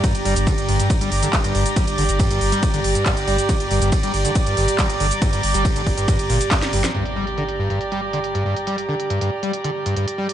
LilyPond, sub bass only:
\new Staff \with { instrumentName = "Sub bass" } { \clef bass \time 4/4 \key g \minor \tempo 4 = 139 r16 g,,16 g,,16 g,,16 r16 g,,16 g,,16 r8 g,,16 g,,16 r8 g,,16 g,,16 r16 | r16 g,,16 g,,16 g,,16 r16 g,,16 g,,16 r8 g,,16 g,,16 r8 g,,16 g,,16 r16 | r16 g,,16 g,,16 g,,16 r16 g,,16 g,,16 r8 g,,16 g,,16 r8 g,,16 g,,16 r16 | r16 g,,16 g,,16 g,,16 r16 g,,16 g,,16 r8 g,,16 g,,16 r8 g,,16 g,,16 r16 |
r1 | r1 | }